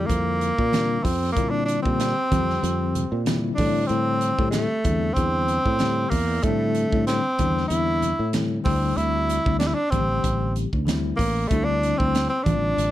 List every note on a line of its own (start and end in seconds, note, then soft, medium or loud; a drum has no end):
0.00 0.53 D3 medium
0.00 0.53 G3 medium
0.00 0.54 C4 medium
0.00 0.54 E4 medium
0.06 0.50 F2 medium
0.06 1.05 A#3 medium
0.06 kick medium
0.06 closed hi-hat medium
0.06 muted conga soft
0.41 closed hi-hat medium
0.58 0.97 A#2 medium
0.58 0.65 C4 soft
0.58 0.66 D4 soft
0.58 kick medium
0.72 1.03 D3 medium
0.72 1.03 G3 medium
0.72 1.03 C4 medium
0.72 1.04 D4 medium
0.72 snare loud
0.72 closed hi-hat medium
0.72 muted conga soft
0.72 high conga medium
1.04 1.31 F2 medium
1.04 1.31 C4 medium
1.04 1.13 C4 soft
1.04 kick medium
1.04 open hi-hat medium
1.23 snare soft
1.32 1.82 D3 medium
1.32 1.82 G3 medium
1.32 1.51 A#3 medium
1.36 1.77 A#2 medium
1.36 1.82 C4 medium
1.36 1.82 E4 medium
1.36 kick loud
1.36 closed hi-hat medium
1.36 muted conga soft
1.50 1.65 D4 medium
1.65 1.82 D4 medium
1.65 closed hi-hat medium
1.65 muted conga soft
1.82 2.12 A#2 medium
1.82 2.14 D3 medium
1.82 2.14 G3 medium
1.82 3.26 C4 medium
1.82 2.14 C4 medium
1.82 2.15 G4 medium
1.82 kick medium
2.00 snare loud
2.00 closed hi-hat medium
2.17 2.24 C4 soft
2.31 2.58 F2 medium
2.31 3.06 D3 medium
2.31 3.07 G3 medium
2.31 3.07 C4 medium
2.31 3.07 G4 medium
2.31 kick medium
2.31 closed hi-hat medium
2.31 high conga medium
2.50 snare soft
2.63 3.04 F2 medium
2.63 closed hi-hat medium
2.63 muted conga soft
2.95 closed hi-hat medium
2.95 low conga medium
3.12 3.50 A#2 medium
3.12 3.19 C4 soft
3.12 3.19 G4 soft
3.26 3.56 D3 medium
3.26 3.57 G3 medium
3.26 3.57 C4 medium
3.26 3.57 E4 medium
3.26 snare medium
3.26 closed hi-hat medium
3.26 muted conga soft
3.26 high conga medium
3.54 3.88 D4 medium
3.54 open hi-hat medium
3.58 3.85 A2 medium
3.58 4.34 D3 medium
3.58 4.34 G3 medium
3.58 4.35 C4 medium
3.58 4.35 E4 medium
3.58 kick medium
3.58 high conga medium
3.86 4.31 A2 medium
3.86 4.50 C4 loud
3.86 closed hi-hat medium
3.91 muted conga soft
4.21 closed hi-hat medium
4.21 muted conga soft
4.39 4.65 A2 medium
4.39 4.69 D3 medium
4.39 4.69 G3 medium
4.39 4.69 C4 medium
4.39 4.70 G4 medium
4.39 kick medium
4.50 5.15 A3 medium
4.50 snare loud
4.50 closed hi-hat medium
4.50 high conga medium
4.71 4.78 C4 soft
4.71 4.79 G4 soft
4.84 5.11 E2 medium
4.84 5.61 D3 medium
4.84 5.61 G3 medium
4.84 5.61 C4 medium
4.84 5.62 D4 medium
4.84 kick medium
4.84 closed hi-hat medium
4.84 high conga medium
5.14 5.57 E2 medium
5.14 6.11 C4 loud
5.14 kick medium
5.14 closed hi-hat medium
5.48 closed hi-hat medium
5.65 6.04 A2 medium
5.65 kick medium
5.79 6.10 D3 medium
5.79 6.11 G3 medium
5.79 6.11 C4 medium
5.79 6.11 G4 medium
5.79 snare loud
5.79 closed hi-hat medium
5.79 muted conga soft
5.79 high conga medium
6.09 6.38 E2 medium
6.09 6.45 A#3 medium
6.09 kick medium
6.09 open hi-hat medium
6.14 6.21 C4 soft
6.14 6.22 E4 soft
6.43 6.84 A2 medium
6.43 6.90 D3 medium
6.43 6.90 G3 medium
6.43 7.06 A3 medium
6.43 6.91 C4 medium
6.43 kick loud
6.43 closed hi-hat medium
6.43 muted conga soft
6.47 6.91 D4 loud
6.75 closed hi-hat medium
6.75 muted conga soft
6.93 7.19 A2 medium
6.93 7.23 D3 medium
6.93 7.23 G3 medium
6.93 7.24 C4 medium
6.93 kick medium
6.97 7.24 D4 medium
7.07 7.66 C4 medium
7.07 snare loud
7.07 closed hi-hat medium
7.25 7.32 C4 soft
7.25 7.32 E4 soft
7.39 7.65 E2 medium
7.39 8.15 D3 medium
7.39 8.15 G3 medium
7.39 8.15 C4 medium
7.39 8.15 D4 medium
7.39 kick medium
7.39 closed hi-hat medium
7.39 high conga medium
7.57 snare soft
7.68 8.11 E2 medium
7.68 8.34 E4 medium
7.68 closed hi-hat medium
8.02 closed hi-hat medium
8.02 low conga soft
8.19 8.58 A2 medium
8.33 8.63 D3 medium
8.33 8.64 G3 medium
8.33 8.64 C4 medium
8.33 8.64 E4 medium
8.33 snare loud
8.33 closed hi-hat medium
8.33 muted conga soft
8.33 high conga medium
8.64 8.92 D2 medium
8.64 9.41 D3 medium
8.64 9.41 G3 medium
8.64 8.98 C4 medium
8.64 9.41 C4 medium
8.64 9.41 E4 medium
8.64 kick loud
8.64 open hi-hat medium
8.64 high conga medium
8.96 9.38 D2 medium
8.96 9.58 E4 loud
8.96 closed hi-hat medium
8.96 muted conga soft
9.29 closed hi-hat medium
9.29 muted conga soft
9.45 9.72 D2 medium
9.45 9.75 D3 medium
9.45 9.76 G3 medium
9.45 9.76 C4 medium
9.45 9.76 E4 medium
9.45 kick medium
9.59 9.69 D4 medium
9.59 snare loud
9.59 closed hi-hat medium
9.59 high conga medium
9.67 9.76 E4 medium
9.74 9.92 D4 medium
9.90 10.19 A1 medium
9.90 10.68 D3 medium
9.90 10.68 G3 medium
9.90 10.55 C4 medium
9.90 10.68 C4 medium
9.90 kick medium
9.90 closed hi-hat medium
9.90 high conga medium
9.95 10.69 G4 medium
10.23 10.65 A1 medium
10.23 kick medium
10.23 closed hi-hat medium
10.23 muted conga soft
10.56 closed hi-hat medium
10.73 11.12 D2 medium
10.73 10.80 C4 soft
10.73 10.81 E4 soft
10.73 kick medium
10.86 11.17 D3 medium
10.86 11.17 G3 medium
10.86 11.17 C4 medium
10.86 11.18 E4 medium
10.86 snare loud
10.86 closed hi-hat medium
10.86 muted conga soft
10.86 high conga medium
11.16 11.45 A1 medium
11.16 11.49 A#3 medium
11.16 11.27 C4 soft
11.16 kick medium
11.16 open hi-hat medium
11.48 11.92 D2 medium
11.48 11.96 D3 medium
11.48 11.97 G3 medium
11.48 11.66 A3 medium
11.48 kick loud
11.48 closed hi-hat medium
11.48 muted conga soft
11.52 11.97 C4 medium
11.52 11.97 E4 loud
11.65 11.99 D4 loud
11.82 closed hi-hat medium
11.82 muted conga soft
11.97 12.26 D2 medium
11.97 12.29 D3 medium
11.97 12.30 G3 medium
11.97 12.28 C4 medium
11.97 12.30 C4 medium
11.97 12.30 E4 medium
11.97 kick medium
12.15 snare loud
12.15 closed hi-hat medium
12.29 12.45 C4 medium
12.29 12.39 C4 soft
12.43 12.73 A1 medium
12.43 12.91 D3 medium
12.43 12.91 G3 medium
12.43 12.91 C4 medium
12.43 12.91 D4 medium
12.43 12.91 F4 medium
12.43 kick medium
12.43 closed hi-hat medium
12.43 high conga medium
12.77 12.91 A1 medium
12.77 closed hi-hat medium